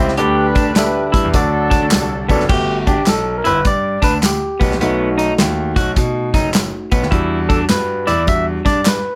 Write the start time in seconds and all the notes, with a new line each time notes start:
Already playing: C#2 C4
0.00 E4 G4 C5 E5
0.08 snare
0.17 D2 D3 G3 D4 G4 B4 D5, closed hi-hat
0.55 D2 D4, kick, closed hi-hat, tambourine
0.75 D4 G4 A4 E5, snare, clap, closed hi-hat, tambourine
0.84 B4
1.12 G2 E4, kick, closed hi-hat, tambourine
1.24 E2
1.33 D2 D3 F#3 D4 F#4 A4 D5, kick, closed hi-hat, tambourine
1.70 D4, kick, snare, closed hi-hat, tambourine
1.82 D2
1.91 C2, snare, clap, closed hi-hat, tambourine
2.29 F#1 B3 D4 F#4 A4 D5, kick, open hi-hat, tambourine
2.40 snare
2.49 G1 A3 B3 F#4 G4, kick, crash, tambourine
2.87 D4 G4, kick, closed hi-hat, tambourine
3.06 B1 A4, snare, clap, closed hi-hat, tambourine
3.38 A#4
3.44 G1 E4 B4, closed hi-hat, tambourine
3.65 G2 D5, kick, closed hi-hat, tambourine
4.02 D2 D4 B4, kick, snare, closed hi-hat, tambourine
4.22 G4, snare, clap, closed hi-hat, tambourine
4.60 B1 B3, kick, open hi-hat, tambourine
4.71 A#1, snare
4.81 B1 A3 B3 D#4 F#4, closed hi-hat, tambourine
5.18 D#4, closed hi-hat, tambourine
5.38 D#2, snare, clap, closed hi-hat, tambourine
5.76 B1 F#4, kick, closed hi-hat, tambourine
5.96 B2, kick, closed hi-hat, tambourine
6.34 F#1 D#4, kick, snare, closed hi-hat, tambourine
6.54 snare, clap, closed hi-hat, tambourine
6.92 B1 B3, kick, closed hi-hat, tambourine
7.03 D#2, snare
7.11 E2 G3 D4 E4 F#4, kick, closed hi-hat
7.49 D4 A4, kick, closed hi-hat, tambourine
7.69 G2 B4, snare, clap, closed hi-hat, tambourine
8.07 E2 E4 D5, closed hi-hat, tambourine
8.27 G3 D4 F#4 E5, kick, closed hi-hat, tambourine
8.65 G2 D4 D5, kick, snare, closed hi-hat, tambourine
8.85 B4, snare, clap, closed hi-hat, tambourine